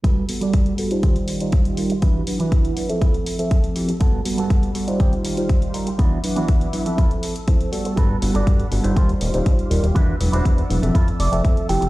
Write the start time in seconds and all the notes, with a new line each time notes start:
0.03 G3 F#4 A4 B4 F#5 B5, kick, closed hi-hat
0.29 G3 B3 F#4 A4, open hi-hat
0.41 G3 F#4 A4 D5, closed hi-hat
0.53 kick, closed hi-hat
0.66 closed hi-hat
0.78 G3 B3 F#4 A4, open hi-hat
0.91 G3 D#4 F4 C5, closed hi-hat
1.02 D#3 F4 G4 C5 F5 C6, kick, closed hi-hat
1.16 closed hi-hat
1.27 muted clean electric guitar stroke, open hi-hat
1.40 G3 D#4 F4 C5, closed hi-hat
1.52 kick, closed hi-hat
1.65 closed hi-hat
1.77 G3 D#4 F4 A#4, open hi-hat
1.90 muted clean electric guitar stroke, closed hi-hat
2.02 E3 D4 E4 F#4 B4 E5 F#5 D6, kick, closed hi-hat
2.27 F#3 D4 E4 B4, open hi-hat
2.39 E3 D4 E4 F#4 B4, closed hi-hat
2.52 kick, closed hi-hat
2.65 closed hi-hat
2.76 F#3 D4 E4 B4, open hi-hat
2.89 F3 C4 A4 E5, closed hi-hat
3.01 E4 F4 A4 E6, kick, closed hi-hat
3.14 closed hi-hat
3.25 muted clean electric guitar stroke, open hi-hat
3.38 F3 C4 A4 E5, closed hi-hat
3.51 kick, closed hi-hat
3.64 closed hi-hat
3.75 F3 C4 E4 G4, open hi-hat
3.88 muted clean electric guitar stroke, closed hi-hat
4.00 G2 G3 B3 F#4 A4 F#5 B5, kick, closed hi-hat
4.25 G3 B3 F#4 A4, open hi-hat
4.38 G2 B3 F#4 A4, closed hi-hat
4.50 kick, closed hi-hat
4.63 closed hi-hat
4.75 G3 B3 F#4 A4, open hi-hat
4.87 G3 D#4 F4 C5, closed hi-hat
4.99 D#3 C4 F4 G4 F5 C6, kick, closed hi-hat
5.13 closed hi-hat
5.24 muted clean electric guitar stroke, open hi-hat
5.37 G3 D#4 F4 C5, closed hi-hat
5.49 kick, closed hi-hat
5.62 closed hi-hat
5.74 G3 D#4 F4 A#4, open hi-hat
5.86 muted clean electric guitar stroke, closed hi-hat
5.98 E3 B3 D4 E4 F#4 B4 E5 F#5 D6, kick, closed hi-hat
6.23 F#3 D4 E4 B4, open hi-hat
6.36 E3 B3 D4 E4 F#4, closed hi-hat
6.48 kick, closed hi-hat
6.61 closed hi-hat
6.73 F#3 D4 E4 B4, open hi-hat
6.86 F3 C4 A4 E5, closed hi-hat
6.97 E4 F4 A4 E6, kick, closed hi-hat
7.11 closed hi-hat
7.22 muted clean electric guitar stroke, open hi-hat
7.36 closed hi-hat
7.47 F3 C4 E4 C5, kick, closed hi-hat
7.61 closed hi-hat
7.72 G3 B3 F#4 A4, open hi-hat
7.84 muted clean electric guitar stroke, closed hi-hat
7.96 G2 F#4 A4 B4 F#5 B5, kick, closed hi-hat
8.22 G1 G3 B3 F#4 A4, open hi-hat
8.34 G1 F#4 A4 D5, closed hi-hat
8.47 G2, kick, closed hi-hat
8.60 closed hi-hat
8.71 G1 G3 B3 F#4 A4, open hi-hat
8.84 G1 G3 D#4 F4 C5, closed hi-hat
8.95 D#2 F4 G4 C5 F5 C6, kick, closed hi-hat
9.09 closed hi-hat
9.20 D#1, muted clean electric guitar stroke, open hi-hat
9.34 D#1 G3 D#4 F4 C5, closed hi-hat
9.46 D#2, kick, closed hi-hat
9.59 closed hi-hat
9.70 D#1 G3 D#4 F4 A#4, open hi-hat
9.83 D#1, muted clean electric guitar stroke, closed hi-hat
9.95 E2 D4 E4 F#4 B4 D5 F#5 B5 E6, kick, closed hi-hat
10.20 E1 F#3 D4 E4 B4, open hi-hat
10.32 E1 D4 E4 F#4 C5, closed hi-hat
10.45 E2, kick, closed hi-hat
10.58 closed hi-hat
10.70 E1 F#3 D4 E4 B4, open hi-hat
10.82 E1 F3 C4 A4 E5, closed hi-hat
10.94 F2 E4 F4 A4, kick, closed hi-hat
11.08 closed hi-hat
11.19 F1 D5, muted clean electric guitar stroke, open hi-hat
11.32 F1 F3 C4 A4 E5, closed hi-hat
11.45 F2 E5, kick, closed hi-hat
11.57 closed hi-hat
11.69 F1 F3 C4 E4 G4 G5, open hi-hat
11.81 F1, muted clean electric guitar stroke, closed hi-hat